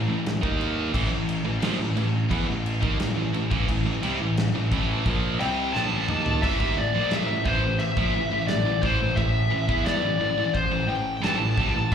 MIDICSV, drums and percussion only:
0, 0, Header, 1, 2, 480
1, 0, Start_track
1, 0, Tempo, 684932
1, 666, Time_signature, 4, 2, 24, 8
1, 8373, End_track
2, 0, Start_track
2, 0, Title_t, "Drums"
2, 184, Note_on_c, 9, 49, 78
2, 190, Note_on_c, 9, 38, 108
2, 254, Note_off_c, 9, 49, 0
2, 260, Note_off_c, 9, 38, 0
2, 304, Note_on_c, 9, 36, 107
2, 374, Note_off_c, 9, 36, 0
2, 426, Note_on_c, 9, 49, 61
2, 496, Note_off_c, 9, 49, 0
2, 661, Note_on_c, 9, 36, 105
2, 666, Note_on_c, 9, 49, 91
2, 732, Note_off_c, 9, 36, 0
2, 736, Note_off_c, 9, 49, 0
2, 901, Note_on_c, 9, 49, 76
2, 972, Note_off_c, 9, 49, 0
2, 1137, Note_on_c, 9, 49, 93
2, 1142, Note_on_c, 9, 38, 111
2, 1207, Note_off_c, 9, 49, 0
2, 1212, Note_off_c, 9, 38, 0
2, 1378, Note_on_c, 9, 49, 66
2, 1448, Note_off_c, 9, 49, 0
2, 1619, Note_on_c, 9, 36, 100
2, 1619, Note_on_c, 9, 49, 83
2, 1689, Note_off_c, 9, 36, 0
2, 1689, Note_off_c, 9, 49, 0
2, 1864, Note_on_c, 9, 49, 73
2, 1934, Note_off_c, 9, 49, 0
2, 1981, Note_on_c, 9, 36, 105
2, 2051, Note_off_c, 9, 36, 0
2, 2100, Note_on_c, 9, 49, 85
2, 2105, Note_on_c, 9, 38, 103
2, 2170, Note_off_c, 9, 49, 0
2, 2176, Note_off_c, 9, 38, 0
2, 2343, Note_on_c, 9, 49, 60
2, 2413, Note_off_c, 9, 49, 0
2, 2463, Note_on_c, 9, 36, 104
2, 2533, Note_off_c, 9, 36, 0
2, 2582, Note_on_c, 9, 36, 80
2, 2584, Note_on_c, 9, 49, 80
2, 2653, Note_off_c, 9, 36, 0
2, 2654, Note_off_c, 9, 49, 0
2, 2824, Note_on_c, 9, 49, 69
2, 2894, Note_off_c, 9, 49, 0
2, 3065, Note_on_c, 9, 49, 85
2, 3070, Note_on_c, 9, 38, 115
2, 3135, Note_off_c, 9, 49, 0
2, 3141, Note_off_c, 9, 38, 0
2, 3305, Note_on_c, 9, 36, 100
2, 3309, Note_on_c, 9, 49, 65
2, 3375, Note_off_c, 9, 36, 0
2, 3379, Note_off_c, 9, 49, 0
2, 3544, Note_on_c, 9, 49, 69
2, 3545, Note_on_c, 9, 36, 104
2, 3614, Note_off_c, 9, 49, 0
2, 3615, Note_off_c, 9, 36, 0
2, 3787, Note_on_c, 9, 49, 71
2, 3857, Note_off_c, 9, 49, 0
2, 4031, Note_on_c, 9, 38, 62
2, 4101, Note_off_c, 9, 38, 0
2, 4264, Note_on_c, 9, 45, 85
2, 4334, Note_off_c, 9, 45, 0
2, 4387, Note_on_c, 9, 43, 86
2, 4457, Note_off_c, 9, 43, 0
2, 4507, Note_on_c, 9, 36, 101
2, 4510, Note_on_c, 9, 52, 66
2, 4510, Note_on_c, 9, 57, 110
2, 4577, Note_off_c, 9, 36, 0
2, 4580, Note_off_c, 9, 52, 0
2, 4580, Note_off_c, 9, 57, 0
2, 4627, Note_on_c, 9, 36, 113
2, 4697, Note_off_c, 9, 36, 0
2, 4982, Note_on_c, 9, 52, 72
2, 4988, Note_on_c, 9, 38, 112
2, 5052, Note_off_c, 9, 52, 0
2, 5058, Note_off_c, 9, 38, 0
2, 5225, Note_on_c, 9, 36, 106
2, 5295, Note_off_c, 9, 36, 0
2, 5463, Note_on_c, 9, 52, 60
2, 5533, Note_off_c, 9, 52, 0
2, 5585, Note_on_c, 9, 36, 109
2, 5655, Note_off_c, 9, 36, 0
2, 5944, Note_on_c, 9, 52, 58
2, 5950, Note_on_c, 9, 38, 114
2, 6014, Note_off_c, 9, 52, 0
2, 6020, Note_off_c, 9, 38, 0
2, 6188, Note_on_c, 9, 36, 105
2, 6258, Note_off_c, 9, 36, 0
2, 6429, Note_on_c, 9, 36, 90
2, 6430, Note_on_c, 9, 52, 57
2, 6499, Note_off_c, 9, 36, 0
2, 6500, Note_off_c, 9, 52, 0
2, 6790, Note_on_c, 9, 36, 99
2, 6860, Note_off_c, 9, 36, 0
2, 6910, Note_on_c, 9, 52, 65
2, 6915, Note_on_c, 9, 38, 110
2, 6980, Note_off_c, 9, 52, 0
2, 6985, Note_off_c, 9, 38, 0
2, 7391, Note_on_c, 9, 36, 91
2, 7392, Note_on_c, 9, 52, 59
2, 7461, Note_off_c, 9, 36, 0
2, 7462, Note_off_c, 9, 52, 0
2, 7873, Note_on_c, 9, 52, 63
2, 7879, Note_on_c, 9, 38, 102
2, 7943, Note_off_c, 9, 52, 0
2, 7949, Note_off_c, 9, 38, 0
2, 8112, Note_on_c, 9, 36, 105
2, 8182, Note_off_c, 9, 36, 0
2, 8373, End_track
0, 0, End_of_file